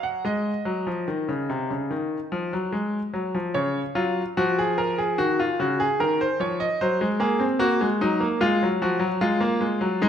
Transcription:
0.00 0.22 F#3 medium
0.00 0.24 F#5 medium
0.25 0.51 G#3 medium
0.25 3.11 D#5 medium
0.65 0.86 F#3 medium
0.87 1.07 F3 soft
1.08 1.28 D#3 medium
1.28 1.49 C#3 soft
1.50 1.70 C3 medium
1.70 1.90 C#3 soft
1.91 2.16 D#3 medium
2.32 2.52 F3 medium
2.53 2.73 F#3 medium
2.72 2.98 G#3 medium
3.14 3.34 F#3 soft
3.34 3.55 F3 soft
3.54 3.80 C#3 medium
3.54 3.80 C#5 medium
3.95 4.21 F#3 medium
3.95 4.21 F4 medium
4.37 5.16 F3 medium
4.37 4.57 F#4 medium
4.59 4.78 G#4 medium
4.78 4.98 A#4 medium
4.98 5.18 G#4 medium
5.18 5.44 D#3 medium
5.18 5.38 F#4 medium
5.40 5.59 F4 medium
5.59 5.84 C#3 medium
5.59 5.79 F#4 medium
5.80 5.99 G#4 medium
6.00 6.25 D#3 medium
6.00 6.20 A#4 medium
6.21 6.40 C5 medium
6.40 6.65 F3 medium
6.40 6.60 C#5 medium
6.60 6.80 D#5 medium
6.81 7.00 F#3 medium
6.81 7.06 C5 medium
7.01 7.20 G#3 medium
7.20 7.40 A#3 medium
7.20 7.45 G#4 medium
7.40 7.60 C4 medium
7.59 7.80 A#3 medium
7.59 7.85 F#4 medium
7.81 8.00 G#3 medium
8.01 8.21 F#3 medium
8.01 8.26 D#4 medium
8.20 8.40 A#3 medium
8.41 8.60 G#3 medium
8.41 8.66 F4 medium
8.63 8.81 F#3 medium
8.82 9.01 F3 medium
8.82 9.07 F#4 medium
9.00 9.20 F#3 medium
9.21 9.41 G#3 medium
9.21 9.99 F4 medium
9.41 9.61 A#3 medium
9.61 9.81 G#3 medium
9.81 10.01 F#3 medium
10.02 10.09 G#3 medium
10.02 10.09 D#4 medium

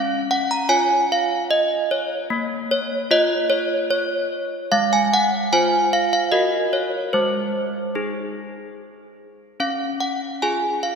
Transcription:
0.00 0.69 C#4 medium
0.00 0.30 F5 medium
0.31 0.52 F#5 loud
0.51 0.72 A#5 medium
0.69 2.28 F4 medium
0.69 1.90 C#5 medium
0.69 1.10 G#5 loud
1.12 1.51 F5 medium
1.51 1.91 D#5 loud
1.91 2.69 C#5 medium
2.30 3.10 A#3 medium
2.71 3.10 C#5 medium
3.11 4.68 F4 medium
3.11 3.48 C#5 medium
3.11 3.51 D#5 loud
3.50 3.89 C#5 loud
3.91 4.69 C#5 loud
4.72 5.50 G#3 medium
4.72 4.93 F5 loud
4.93 5.13 G#5 loud
5.14 5.52 F#5 loud
5.53 6.29 F4 medium
5.53 6.29 C5 medium
5.53 5.91 G#5 loud
5.93 6.12 F5 loud
6.13 6.33 F5 medium
6.32 7.11 F#4 medium
6.32 7.10 A#4 soft
6.32 6.71 D#5 medium
6.73 7.12 C#5 medium
7.13 7.93 G#3 medium
7.13 8.73 C5 medium
7.95 9.56 D#4 soft
7.95 9.56 G#4 medium
9.60 10.38 C#4 medium
9.60 9.99 F5 medium
10.01 10.39 F#5 medium
10.42 10.95 F4 soft
10.42 10.95 G#4 soft
10.42 10.80 G#5 medium
10.83 10.95 F5 medium

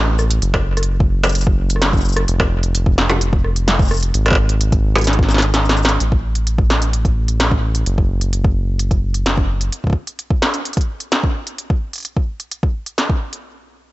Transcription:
0.00 0.40 A1 medium
0.19 cross-stick medium
0.19 shaker medium
0.30 closed hi-hat medium
0.42 2.26 F#1 medium
0.42 closed hi-hat medium
0.54 kick loud
0.54 cross-stick medium
0.54 struck metal loud
0.77 cross-stick medium
0.77 closed hi-hat medium
0.83 closed hi-hat medium
1.00 kick loud
1.24 closed hi-hat soft
1.24 struck metal loud
1.24 shaker soft
1.26 closed hi-hat soft
1.26 shaker soft
1.29 shaker soft
1.32 closed hi-hat medium
1.32 shaker soft
1.35 shaker soft
1.38 closed hi-hat soft
1.38 shaker medium
1.41 shaker medium
1.44 kick loud
1.44 shaker medium
1.70 closed hi-hat soft
1.70 shaker medium
1.76 cross-stick soft
1.82 snare loud
1.82 closed hi-hat medium
1.93 kick loud
1.93 shaker soft
1.97 shaker soft
2.01 shaker medium
2.05 shaker medium
2.09 shaker medium
2.13 cross-stick medium
2.13 closed hi-hat medium
2.13 shaker medium
2.28 4.12 F1 medium
2.28 closed hi-hat medium
2.40 kick loud
2.40 cross-stick medium
2.40 struck metal loud
2.63 closed hi-hat medium
2.75 closed hi-hat medium
2.86 kick loud
2.98 cross-stick medium
2.98 snare loud
3.10 struck metal loud
3.10 shaker medium
3.21 closed hi-hat medium
3.33 kick loud
3.44 cross-stick soft
3.56 closed hi-hat medium
3.68 snare loud
3.68 closed hi-hat medium
3.79 kick loud
3.79 shaker soft
3.82 shaker soft
3.85 shaker soft
3.88 cross-stick medium
3.88 shaker medium
3.91 shaker medium
3.94 shaker medium
3.97 shaker medium
4.00 closed hi-hat medium
4.00 shaker medium
4.14 5.98 G#1 medium
4.14 closed hi-hat medium
4.26 cross-stick medium
4.26 closed hi-hat soft
4.26 struck metal soft
4.28 struck metal medium
4.30 kick loud
4.30 struck metal medium
4.33 struck metal medium
4.35 struck metal medium
4.49 closed hi-hat medium
4.61 closed hi-hat medium
4.72 kick loud
4.72 closed hi-hat soft
4.96 closed hi-hat soft
4.96 struck metal loud
4.98 closed hi-hat soft
5.01 closed hi-hat soft
5.04 snare medium
5.04 closed hi-hat soft
5.07 closed hi-hat medium
5.13 closed hi-hat soft
5.19 kick loud
5.19 snare soft
5.28 snare soft
5.28 shaker medium
5.34 snare medium
5.38 snare medium
5.40 snare medium
5.40 closed hi-hat medium
5.54 snare medium
5.54 closed hi-hat medium
5.65 snare loud
5.65 shaker soft
5.71 shaker soft
5.77 shaker medium
5.85 snare loud
5.85 closed hi-hat medium
6.00 7.84 A1 medium
6.00 closed hi-hat medium
6.12 kick loud
6.35 closed hi-hat medium
6.47 closed hi-hat medium
6.58 kick loud
6.70 snare loud
6.82 closed hi-hat medium
6.93 closed hi-hat medium
7.05 kick loud
7.05 closed hi-hat soft
7.28 closed hi-hat soft
7.40 snare loud
7.40 closed hi-hat medium
7.51 kick loud
7.75 closed hi-hat medium
7.86 9.70 F#1 medium
7.86 closed hi-hat medium
7.98 kick loud
8.21 closed hi-hat medium
8.33 closed hi-hat medium
8.44 kick loud
8.79 closed hi-hat medium
8.91 kick loud
8.91 closed hi-hat soft
9.14 closed hi-hat soft
9.26 snare loud
9.26 closed hi-hat medium
9.37 kick loud
9.61 closed hi-hat medium
9.72 closed hi-hat medium
9.84 kick medium
9.87 kick medium
9.90 kick medium
9.93 kick loud
10.07 closed hi-hat soft
10.19 closed hi-hat medium
10.30 kick loud
10.42 snare loud
10.54 closed hi-hat medium
10.65 closed hi-hat medium
10.73 kick loud
10.73 closed hi-hat soft
10.77 closed hi-hat soft
10.81 closed hi-hat soft
11.00 closed hi-hat soft
11.12 snare loud
11.12 closed hi-hat medium
11.23 kick loud
11.47 closed hi-hat soft
11.58 closed hi-hat medium
11.70 kick loud
11.93 closed hi-hat soft
11.96 closed hi-hat soft
11.98 closed hi-hat soft
12.00 closed hi-hat soft
12.03 closed hi-hat soft
12.05 closed hi-hat medium
12.17 kick loud
12.40 closed hi-hat soft
12.51 closed hi-hat medium
12.63 kick loud
12.86 closed hi-hat soft
12.98 snare loud
12.98 closed hi-hat medium
13.10 kick loud
13.33 closed hi-hat soft

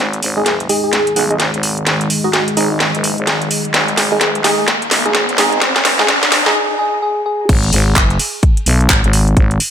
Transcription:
0.00 0.21 G#1 loud
0.00 6.51 D#3 medium
0.00 6.51 G#3 medium
0.00 6.51 G#4 medium
0.00 6.51 D#5 medium
0.00 riser medium
0.13 closed hi-hat medium
0.22 0.44 G#1 loud
0.22 open hi-hat loud
0.37 0.42 G#3 medium
0.37 0.42 D#4 medium
0.37 0.42 G#4 medium
0.37 0.53 G#4 medium
0.37 0.42 D#5 medium
0.46 0.68 F#1 medium
0.46 snare soft
0.46 closed hi-hat medium
0.60 closed hi-hat medium
0.69 1.14 G#3 medium
0.69 1.14 D#4 medium
0.69 1.14 G#4 medium
0.69 0.81 G#4 medium
0.69 1.14 D#5 medium
0.69 open hi-hat loud
0.84 1.31 G#4 medium
0.93 snare soft
0.93 closed hi-hat medium
1.07 closed hi-hat medium
1.16 1.38 B1 medium
1.16 1.24 G#3 medium
1.16 1.24 D#4 medium
1.16 1.24 G#4 medium
1.16 1.24 F#5 loud
1.16 open hi-hat loud
1.31 1.35 G#3 medium
1.31 1.35 D#4 medium
1.31 1.35 G#4 medium
1.31 1.35 D#5 loud
1.31 closed hi-hat soft
1.40 1.52 G#1 medium
1.40 snare medium
1.40 closed hi-hat medium
1.54 1.85 G#1 medium
1.54 closed hi-hat soft
1.63 open hi-hat loud
1.77 closed hi-hat soft
1.87 2.09 G#1 loud
1.87 snare medium
1.87 closed hi-hat medium
2.01 closed hi-hat soft
2.10 open hi-hat loud
2.24 2.29 G#3 medium
2.24 2.29 D#4 medium
2.24 2.30 F#4 medium
2.24 2.29 G#4 medium
2.24 2.29 D#5 medium
2.33 2.43 F#4 medium
2.33 snare medium
2.33 closed hi-hat medium
2.48 closed hi-hat medium
2.57 2.92 G#1 loud
2.57 2.69 G#3 medium
2.57 2.66 D#4 medium
2.57 2.69 D#4 medium
2.57 2.69 G#4 medium
2.57 2.69 D#5 loud
2.57 open hi-hat loud
2.71 2.77 D#4 medium
2.80 snare medium
2.80 closed hi-hat medium
2.95 3.16 F#1 loud
2.95 closed hi-hat medium
3.04 open hi-hat loud
3.18 3.49 G#1 loud
3.18 closed hi-hat soft
3.27 snare medium
3.27 closed hi-hat medium
3.42 closed hi-hat medium
3.51 open hi-hat loud
3.65 closed hi-hat soft
3.74 3.96 G#1 loud
3.74 snare medium
3.74 closed hi-hat medium
3.88 closed hi-hat medium
3.97 4.19 G#1 loud
3.97 snare medium
3.97 open hi-hat loud
4.12 4.17 G#3 medium
4.12 4.17 D#4 medium
4.12 4.28 G#4 medium
4.12 4.17 G#4 medium
4.12 4.17 D#5 medium
4.21 snare medium
4.21 closed hi-hat medium
4.35 closed hi-hat medium
4.44 4.66 G#3 medium
4.44 4.66 D#4 medium
4.44 4.56 G#4 medium
4.44 4.66 G#4 medium
4.44 4.66 D#5 medium
4.44 snare medium
4.44 open hi-hat loud
4.68 snare medium
4.68 closed hi-hat medium
4.82 closed hi-hat medium
4.91 5.13 B1 medium
4.91 snare medium
4.91 open hi-hat loud
5.06 5.10 G#3 medium
5.06 5.10 D#4 medium
5.06 5.22 G#4 medium
5.06 5.10 G#4 medium
5.06 5.10 D#5 medium
5.06 closed hi-hat soft
5.15 5.27 G#1 medium
5.15 snare medium
5.15 closed hi-hat medium
5.29 5.60 G#1 loud
5.29 closed hi-hat medium
5.38 5.60 G#3 medium
5.38 5.60 D#4 medium
5.38 5.50 G#4 medium
5.38 5.60 G#4 medium
5.38 5.60 D#5 medium
5.38 snare loud
5.38 open hi-hat loud
5.52 closed hi-hat soft
5.62 5.84 G#1 loud
5.62 snare medium
5.62 closed hi-hat medium
5.76 snare medium
5.76 closed hi-hat medium
5.85 6.07 F#1 loud
5.85 snare medium
5.85 open hi-hat loud
5.99 6.04 G#3 medium
5.99 6.04 D#4 medium
5.99 6.04 G#4 medium
5.99 6.07 G#4 medium
5.99 6.04 D#5 medium
5.99 snare medium
6.08 6.30 G#1 medium
6.08 snare medium
6.08 closed hi-hat medium
6.23 snare medium
6.23 closed hi-hat medium
6.32 6.54 G#1 loud
6.32 snare loud
6.32 open hi-hat loud
6.46 6.51 G#3 medium
6.46 6.51 D#4 medium
6.46 6.51 G#4 medium
6.46 6.54 G#4 medium
6.46 6.51 D#5 medium
6.46 snare medium
6.55 6.74 G#4 medium
6.79 6.98 G#4 loud
7.02 7.21 G#4 medium
7.26 7.45 G#4 medium
7.49 7.71 G#1 loud
7.49 kick loud
7.49 closed hi-hat medium
7.49 crash loud
7.63 closed hi-hat medium
7.73 7.95 G#1 loud
7.73 open hi-hat loud
7.96 kick loud
7.96 clap loud
7.96 closed hi-hat medium
8.10 closed hi-hat medium
8.19 open hi-hat loud
8.43 kick loud
8.43 closed hi-hat medium
8.57 closed hi-hat medium
8.66 8.88 B1 medium
8.66 open hi-hat loud
8.81 closed hi-hat soft
8.90 kick loud
8.90 clap loud
8.90 closed hi-hat medium
9.04 9.35 G#1 loud
9.04 closed hi-hat medium
9.13 open hi-hat loud
9.28 closed hi-hat soft
9.37 kick loud
9.37 closed hi-hat medium
9.51 closed hi-hat medium
9.60 open hi-hat loud

